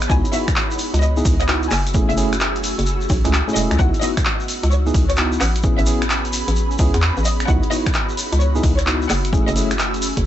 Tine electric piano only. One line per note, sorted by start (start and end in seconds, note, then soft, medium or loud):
0.10 0.25 B3 medium
0.10 0.25 D#4 medium
0.10 0.25 E4 medium
0.10 0.25 F#4 medium
0.33 0.48 B3 medium
0.33 0.48 D#4 medium
0.33 0.48 E4 medium
0.33 0.48 F#4 medium
1.17 1.34 B3 medium
1.17 1.34 D#4 medium
1.17 1.34 E4 medium
1.17 1.34 G#4 medium
1.48 1.68 B3 medium
1.48 1.68 D#4 medium
1.48 1.68 E4 medium
1.48 1.68 F#4 medium
1.94 2.15 A3 medium
1.94 2.15 C#4 medium
1.94 2.15 E4 medium
1.94 2.15 G#4 medium
2.17 2.33 A3 medium
2.17 2.33 C#4 medium
2.17 2.33 E4 medium
2.17 2.33 G#4 medium
3.25 3.33 A3 medium
3.25 3.33 C#4 medium
3.25 3.33 E4 medium
3.25 3.33 G#4 loud
3.48 3.55 A3 medium
3.48 3.55 C#4 medium
3.48 3.55 E4 medium
3.48 3.55 G#4 medium
3.56 3.76 A3 medium
3.56 3.76 C#4 medium
3.56 3.76 E4 medium
3.56 3.76 G#4 medium
3.79 3.94 B3 medium
3.79 3.94 E4 medium
3.79 3.94 F#4 medium
4.02 4.17 B3 medium
4.02 4.17 D#4 medium
4.02 4.17 E4 medium
4.02 4.17 F#4 medium
4.87 5.04 B3 medium
4.87 5.04 D#4 medium
4.87 5.04 E4 medium
4.87 5.04 G#4 medium
5.18 5.37 B3 medium
5.18 5.37 D#4 medium
5.18 5.37 E4 medium
5.18 5.37 F#4 medium
5.64 5.85 B3 medium
5.64 5.85 C#4 medium
5.64 5.85 E4 medium
5.64 5.85 G#4 medium
5.87 6.02 B3 medium
5.87 6.02 C#4 medium
5.87 6.02 E4 medium
5.87 6.02 G#4 medium
6.79 6.94 B3 loud
6.79 6.94 C#4 medium
6.79 6.94 E4 medium
6.79 6.94 G#4 loud
7.48 7.63 B3 medium
7.48 7.63 D#4 medium
7.48 7.63 E4 medium
7.48 7.63 F#4 medium
7.71 7.86 B3 medium
7.71 7.86 D#4 medium
7.71 7.86 E4 medium
7.71 7.86 F#4 medium
8.56 8.73 B3 medium
8.56 8.73 D#4 medium
8.56 8.73 E4 medium
8.56 8.73 G#4 medium
8.87 9.07 B3 medium
8.87 9.07 D#4 medium
8.87 9.07 E4 medium
8.87 9.07 F#4 medium
9.33 9.54 A3 medium
9.33 9.54 C#4 medium
9.33 9.54 E4 medium
9.33 9.54 G#4 medium
9.56 9.71 A3 medium
9.56 9.71 C#4 medium
9.56 9.71 E4 medium
9.56 9.71 G#4 medium